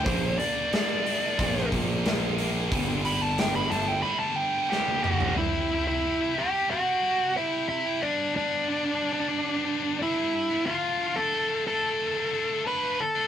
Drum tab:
HH |o-o-o-o-o-o-o-o-|o-o-o-o---------|----------------|----------------|
SD |----o----o--o---|----o-------o---|----------------|----------------|
T1 |----------------|-------------o--|----------------|----------------|
T2 |----------------|--------------o-|----------------|----------------|
FT |----------------|---------------o|----------------|----------------|
BD |o-------o-o-----|o---------------|----------------|----------------|

HH |----------------|
SD |----------------|
T1 |----------------|
T2 |----------------|
FT |----------------|
BD |----------------|